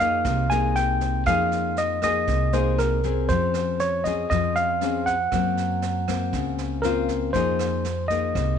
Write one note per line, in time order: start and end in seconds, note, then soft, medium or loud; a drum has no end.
0.00 0.21 F2 medium
0.00 0.23 F3 medium
0.00 0.47 A#3 soft
0.00 0.47 D#4 medium
0.00 0.47 G#4 soft
0.00 0.52 F5 medium
0.25 1.22 C2 loud
0.25 1.25 C3 soft
0.25 kick medium
0.25 cross-stick soft
0.25 snare soft
0.50 1.23 A#3 medium
0.50 1.23 D#4 medium
0.50 1.23 G#4 medium
0.50 0.76 G#5 loud
0.50 snare soft
0.76 1.23 G5 loud
0.76 snare soft
1.01 kick soft
1.01 snare soft
1.26 2.24 F2 loud
1.26 2.25 F3 medium
1.26 1.99 A#3 medium
1.26 1.99 D#4 medium
1.26 1.99 G#4 medium
1.26 1.79 F5 loud
1.26 kick medium
1.26 cross-stick medium
1.26 snare soft
1.52 snare soft
1.77 2.02 D#5 medium
1.77 snare soft
2.02 2.49 A#3 medium
2.02 2.50 D#4 soft
2.02 2.50 G#4 medium
2.02 2.55 D#5 medium
2.02 kick soft
2.02 cross-stick medium
2.02 snare soft
2.27 3.25 C2 medium
2.27 3.27 C3 medium
2.27 kick medium
2.27 snare soft
2.53 3.00 A#3 medium
2.53 3.00 D#4 medium
2.53 3.00 G#4 medium
2.53 2.79 C5 medium
2.53 snare soft
2.78 3.31 A#4 medium
2.78 cross-stick medium
2.78 snare soft
3.03 4.01 C4 medium
3.03 4.02 C#4 medium
3.03 4.02 G#4 medium
3.03 kick soft
3.03 snare soft
3.29 4.26 F2 medium
3.29 4.28 F3 soft
3.29 3.81 C5 medium
3.29 kick medium
3.29 snare soft
3.54 cross-stick medium
3.54 snare soft
3.80 4.04 C#5 medium
3.80 snare soft
4.04 4.77 C4 soft
4.04 4.78 C#4 medium
4.04 4.78 G#4 medium
4.04 4.28 D#5 medium
4.04 kick soft
4.04 snare soft
4.30 5.28 F2 medium
4.30 5.30 F3 medium
4.30 4.56 D#5 medium
4.30 kick medium
4.30 cross-stick medium
4.30 snare soft
4.56 5.08 F5 medium
4.56 snare soft
4.81 5.14 C4 medium
4.81 5.14 C#4 medium
4.81 5.14 G#4 medium
4.81 snare soft
5.06 6.54 F#5 medium
5.06 kick soft
5.06 snare soft
5.32 6.29 F#2 loud
5.32 6.31 F#3 medium
5.32 6.04 A#3 soft
5.32 6.04 C4 medium
5.32 kick medium
5.32 cross-stick medium
5.32 snare soft
5.57 snare soft
5.82 snare soft
6.08 6.80 A#3 soft
6.08 6.80 C4 medium
6.08 kick soft
6.08 cross-stick medium
6.08 snare soft
6.33 7.30 C#2 medium
6.33 7.32 C#3 medium
6.33 kick medium
6.33 snare soft
6.58 snare soft
6.82 7.30 A#3 medium
6.82 7.30 C4 medium
6.82 7.31 F4 medium
6.82 7.30 A#4 medium
6.82 cross-stick medium
6.82 snare soft
7.08 kick soft
7.08 snare soft
7.33 8.31 F2 loud
7.33 8.33 F3 medium
7.33 7.85 A#3 soft
7.33 7.85 D#4 medium
7.33 7.85 G#4 medium
7.33 8.05 C5 medium
7.33 kick medium
7.33 snare soft
7.59 cross-stick medium
7.59 snare soft
7.85 snare soft
8.08 8.57 A#3 medium
8.08 8.57 D#4 soft
8.08 8.57 G#4 medium
8.08 8.56 D#5 medium
8.08 kick soft
8.08 snare soft
8.35 8.59 C2 medium
8.35 8.59 C3 medium
8.35 kick medium
8.35 cross-stick medium
8.35 snare soft